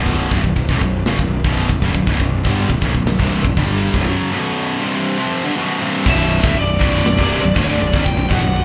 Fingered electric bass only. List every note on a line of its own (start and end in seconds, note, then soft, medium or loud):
0.00 0.28 B0 medium
0.31 0.43 C1 medium
0.44 0.55 B0 medium
0.56 0.68 B0 medium
0.69 0.81 B0 medium
0.81 1.05 B0 medium
1.07 1.18 F#1 loud
1.18 1.42 B0 medium
1.44 1.68 B0 medium
1.69 1.81 B0 medium
1.82 1.93 F#1 medium
1.94 2.06 B0 medium
2.07 2.19 B0 medium
2.19 2.43 B0 medium
2.45 2.68 G1 medium
2.69 2.81 B0 medium
2.82 2.93 B0 medium
2.94 3.05 B0 medium
3.06 3.18 B0 medium
3.20 3.43 C1 medium
3.44 3.56 B0 medium
3.57 3.92 G1 medium
3.94 4.06 B0 medium
6.06 6.42 B0 loud
6.43 6.54 D1 medium
6.55 6.79 B0 medium
6.81 7.04 B0 medium
7.04 7.17 B0 medium
7.19 7.42 C1 medium
7.42 7.55 B0 medium
7.56 7.79 D1 loud
7.80 7.93 B0 medium
7.94 8.05 B0 loud
8.06 8.16 B0 medium
8.17 8.30 B0 medium
8.30 8.42 E1 medium
8.43 8.65 B0 medium